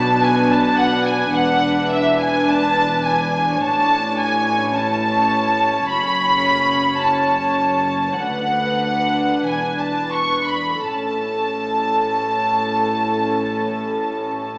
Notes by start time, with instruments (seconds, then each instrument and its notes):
Already playing: double bass section B1, cello section B2, viola section D4 B4, violin section A5
0.22 violin section G#5
0.50 violin section A5
0.78 violin section F#5
1.04 violin section G#5
1.33 double bass section E1, cello section E2, violin section F#5
1.92 violin section E5
2.20 violin section G#5
2.50 violin section A5
3.05 violin section G#5
3.62 double bass section A1, cello section A2, viola section C#5, violin section A5
4.21 violin section G#5
4.75 viola section C#4, violin section A5
5.89 double bass section F#1, cello section F#2, violin section B5
7.01 violin section A5
8.18 double bass section D2, cello section D2, viola section D4 B4, violin section F#5
9.47 double bass section E1, cello section E2, violin section G#5
9.80 violin section A5
10.12 violin section C#6
10.46 violin section B5
10.82 double bass section A1, cello section A2, viola section C#4 A4, violin section A5